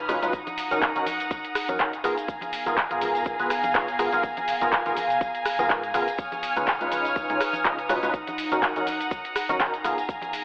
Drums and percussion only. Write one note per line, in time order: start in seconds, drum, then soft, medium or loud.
0.09 cross-stick medium
0.09 open hi-hat loud
0.09 shaker medium
0.22 closed hi-hat soft
0.22 tambourine medium
0.22 shaker soft
0.33 kick loud
0.33 closed hi-hat medium
0.33 tambourine medium
0.33 shaker soft
0.47 closed hi-hat soft
0.47 tambourine soft
0.47 high conga loud
0.47 shaker soft
0.58 open hi-hat loud
0.58 shaker medium
0.71 closed hi-hat soft
0.71 tambourine medium
0.71 shaker soft
0.82 kick loud
0.82 clap loud
0.82 closed hi-hat medium
0.82 tambourine medium
0.82 shaker soft
0.95 closed hi-hat soft
0.95 tambourine soft
0.95 shaker soft
1.06 open hi-hat loud
1.06 high conga medium
1.06 shaker medium
1.20 closed hi-hat soft
1.20 tambourine medium
1.20 shaker soft
1.31 kick loud
1.31 closed hi-hat medium
1.31 tambourine medium
1.31 shaker soft
1.45 closed hi-hat soft
1.45 tambourine soft
1.45 shaker soft
1.55 cross-stick medium
1.55 open hi-hat loud
1.55 shaker medium
1.68 closed hi-hat soft
1.68 tambourine medium
1.68 high conga medium
1.68 shaker soft
1.79 kick loud
1.79 clap loud
1.79 closed hi-hat medium
1.79 tambourine medium
1.79 shaker soft
1.93 closed hi-hat soft
1.93 tambourine soft
1.93 shaker soft
2.04 cross-stick medium
2.04 open hi-hat loud
2.04 shaker medium
2.18 closed hi-hat soft
2.18 tambourine medium
2.18 shaker soft
2.28 kick loud
2.28 closed hi-hat medium
2.28 tambourine medium
2.28 shaker soft
2.41 closed hi-hat soft
2.41 tambourine soft
2.41 high conga medium
2.41 shaker soft
2.53 open hi-hat loud
2.53 shaker medium
2.66 closed hi-hat soft
2.66 tambourine medium
2.66 shaker soft
2.77 kick loud
2.77 clap loud
2.77 closed hi-hat medium
2.77 tambourine medium
2.77 shaker soft
2.90 closed hi-hat soft
2.90 tambourine soft
2.90 shaker soft
3.01 open hi-hat loud
3.01 high conga medium
3.01 shaker medium
3.15 closed hi-hat soft
3.15 tambourine medium
3.15 shaker soft
3.24 kick loud
3.24 closed hi-hat medium
3.24 tambourine medium
3.24 shaker soft
3.40 closed hi-hat soft
3.40 tambourine soft
3.40 shaker soft
3.50 cross-stick medium
3.50 open hi-hat loud
3.50 shaker medium
3.63 closed hi-hat soft
3.63 tambourine medium
3.63 high conga medium
3.63 shaker soft
3.74 kick loud
3.74 clap loud
3.74 closed hi-hat medium
3.74 tambourine medium
3.74 shaker soft
3.88 closed hi-hat soft
3.88 tambourine soft
3.88 shaker soft
3.99 cross-stick medium
3.99 open hi-hat loud
3.99 shaker medium
4.12 closed hi-hat soft
4.12 tambourine medium
4.12 shaker soft
4.23 kick loud
4.23 closed hi-hat medium
4.23 tambourine medium
4.23 shaker soft
4.37 closed hi-hat soft
4.37 tambourine soft
4.37 high conga medium
4.37 shaker soft
4.48 open hi-hat loud
4.48 shaker medium
4.61 closed hi-hat soft
4.61 tambourine medium
4.61 shaker soft
4.72 kick loud
4.72 clap loud
4.72 closed hi-hat medium
4.72 tambourine medium
4.72 shaker soft
4.86 closed hi-hat soft
4.86 tambourine soft
4.86 shaker soft
4.97 open hi-hat loud
4.97 high conga medium
4.97 shaker medium
5.10 closed hi-hat soft
5.10 tambourine medium
5.10 shaker soft
5.21 kick loud
5.21 closed hi-hat medium
5.21 tambourine medium
5.21 shaker soft
5.34 closed hi-hat soft
5.34 tambourine soft
5.34 shaker soft
5.45 cross-stick medium
5.45 open hi-hat loud
5.45 shaker medium
5.59 closed hi-hat soft
5.59 tambourine medium
5.59 high conga medium
5.59 shaker soft
5.70 kick loud
5.70 clap loud
5.70 closed hi-hat medium
5.70 shaker soft
5.83 closed hi-hat soft
5.83 tambourine soft
5.83 shaker soft
5.94 cross-stick medium
5.94 open hi-hat loud
5.94 shaker medium
6.08 closed hi-hat soft
6.08 tambourine medium
6.08 shaker soft
6.18 kick loud
6.18 closed hi-hat medium
6.18 tambourine medium
6.18 shaker soft
6.32 closed hi-hat soft
6.32 tambourine soft
6.32 high conga medium
6.32 shaker soft
6.43 open hi-hat loud
6.43 shaker medium
6.56 closed hi-hat soft
6.56 tambourine medium
6.56 shaker soft
6.66 kick loud
6.66 clap loud
6.66 closed hi-hat medium
6.66 tambourine medium
6.66 shaker soft
6.81 closed hi-hat soft
6.81 tambourine soft
6.81 shaker soft
6.92 open hi-hat medium
6.92 high conga medium
6.92 shaker medium
7.05 closed hi-hat soft
7.05 tambourine medium
7.05 shaker soft
7.16 kick loud
7.16 closed hi-hat medium
7.16 tambourine medium
7.16 shaker soft
7.30 closed hi-hat soft
7.30 tambourine soft
7.30 shaker soft
7.41 cross-stick medium
7.41 open hi-hat loud
7.41 shaker medium
7.53 closed hi-hat soft
7.53 tambourine medium
7.53 high conga medium
7.53 shaker soft
7.65 kick loud
7.65 clap loud
7.65 closed hi-hat medium
7.65 tambourine medium
7.65 shaker soft
7.79 closed hi-hat soft
7.79 tambourine soft
7.79 shaker soft
7.89 cross-stick medium
7.89 open hi-hat loud
7.89 shaker medium
8.03 closed hi-hat soft
8.03 tambourine medium
8.03 shaker soft
8.14 kick loud
8.14 closed hi-hat medium
8.14 tambourine medium
8.14 shaker soft
8.27 closed hi-hat soft
8.27 tambourine soft
8.27 high conga medium
8.27 shaker soft
8.38 open hi-hat loud
8.38 shaker medium
8.51 closed hi-hat soft
8.51 tambourine medium
8.51 shaker soft
8.62 kick loud
8.62 clap loud
8.62 closed hi-hat medium
8.62 tambourine medium
8.62 shaker soft
8.76 closed hi-hat soft
8.76 tambourine soft
8.76 shaker soft
8.87 open hi-hat medium
8.87 high conga medium
8.87 shaker medium
9.01 closed hi-hat soft
9.01 tambourine medium
9.01 shaker soft
9.10 kick loud
9.10 closed hi-hat medium
9.10 tambourine medium
9.10 shaker soft
9.24 closed hi-hat soft
9.24 tambourine soft
9.24 shaker soft
9.36 cross-stick medium
9.36 open hi-hat loud
9.36 shaker medium
9.49 closed hi-hat soft
9.49 tambourine medium
9.49 high conga medium
9.49 shaker soft
9.60 kick loud
9.60 clap loud
9.60 closed hi-hat medium
9.60 tambourine medium
9.60 shaker soft
9.74 closed hi-hat soft
9.74 tambourine soft
9.74 shaker soft
9.84 cross-stick medium
9.84 open hi-hat medium
9.84 shaker medium
9.98 closed hi-hat soft
9.98 tambourine medium
9.98 shaker soft
10.09 kick loud
10.09 closed hi-hat medium
10.09 tambourine medium
10.09 shaker soft
10.22 closed hi-hat soft
10.22 tambourine soft
10.22 high conga medium
10.22 shaker soft
10.33 open hi-hat loud
10.33 shaker medium